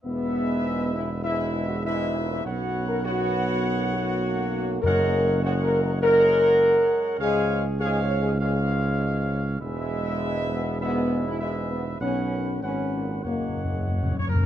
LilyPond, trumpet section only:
\new Staff \with { instrumentName = "Trumpet section" } { \time 4/4 \key fis \major \tempo 4 = 100 <b' e''>2 <b' e''>4 <b' e''>4 | <cis'' fis''>4 <cis'' fis''>2. | <cis'' fis''>4 <cis'' fis''>4 <cis'' fis''>2 | <cis'' eis''>4 <cis'' eis''>4 <cis'' eis''>2 |
<b' e''>2 <b' e''>4 <b' e''>4 | <b' fis''>4 <b' fis''>4 <cis'' fis''>4~ \tuplet 3/2 { <cis'' fis''>8. cis''16 ais'8 } | }